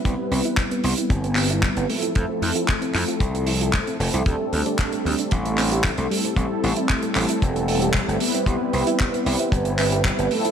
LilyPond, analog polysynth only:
\new Staff \with { instrumentName = "Analog polysynth" } { \time 4/4 \key c \major \tempo 4 = 114 <g b c' e' b'>2.~ <g b c' e' b'>8 <f a c' e' a'>8 | <f a c' e' a'>2.~ <f a c' e' a'>8 <f a c' e' a'>8 | <g a c' d' a'>2.~ <g a c' d' a'>8 <g a c' e' a'>8 | <g a c' e' a'>2.~ <g a c' e' a'>8 <g b c' e' b'>8 |
<g b c' e' b'>2.~ <g b c' e' b'>8 <f a c' e' a'>8 | }